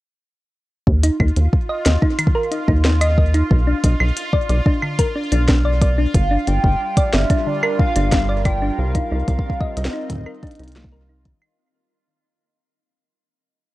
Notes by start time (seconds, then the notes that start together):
0.87 D#2 F4, kick
1.03 D#4, closed hi-hat
1.20 D#2 D#4, kick, claves
1.36 D#2, closed hi-hat
1.53 kick
1.69 D#5
1.86 D#2 D#5, snare, closed hi-hat
2.02 D#4, kick
2.19 D#3, closed hi-hat, claves
2.27 kick
2.35 A#4
2.52 D#4, closed hi-hat
2.68 D#2 D#4, kick
2.85 D#4, snare
3.01 D#5, closed hi-hat, claves
3.18 D#5, kick
3.34 D#4, closed hi-hat
3.51 B1, kick
3.67 D4
3.84 B1 D4, kick, closed hi-hat
4.00 B1, claves
4.17 closed hi-hat
4.33 D5, kick
4.50 B1 D5, closed hi-hat
4.66 D4, kick
4.83 D3, claves
4.99 A#4, kick, closed hi-hat
5.16 D4
5.32 B1 D4, closed hi-hat
5.49 D4, kick, snare
5.65 D5
5.82 D5, kick, closed hi-hat
5.98 D4
6.14 G1 G3 F5, kick, closed hi-hat
6.31 D4
6.44 D4 F4, closed hi-hat
6.48 G1 G5
6.64 G1, kick
6.69 D4
6.97 D5, kick, closed hi-hat
7.13 G1 D5 E5, snare
7.30 D4 A#4, kick, closed hi-hat
7.46 D3 D5
7.63 A#4, claves
7.79 D4 F5, kick
7.96 G1 D4, closed hi-hat
8.12 D4, kick, snare, closed hi-hat
8.29 D5
8.45 D5 G5, kick, closed hi-hat, claves
8.62 D4
8.78 C2 F5
8.95 D#4, kick, closed hi-hat
9.04 C4
9.11 C2 D#4
9.28 C2, kick, closed hi-hat
9.39 kick
9.50 kick
9.60 D#5, kick
9.77 C2 D#5, closed hi-hat
9.81 D#4
9.85 snare
9.93 D#4
10.10 D#3, kick, closed hi-hat
10.13 kick
10.15 kick
10.18 kick
10.21 kick
10.24 A#4, kick, claves
10.43 D4, kick, closed hi-hat
10.47 closed hi-hat
10.51 closed hi-hat
10.55 closed hi-hat
10.59 C2 D#4, closed hi-hat
10.64 closed hi-hat
10.68 closed hi-hat
10.72 snare, closed hi-hat
10.76 A#3
10.84 kick
10.92 A#4
11.09 D#4
11.25 D#3, kick, closed hi-hat
11.42 claves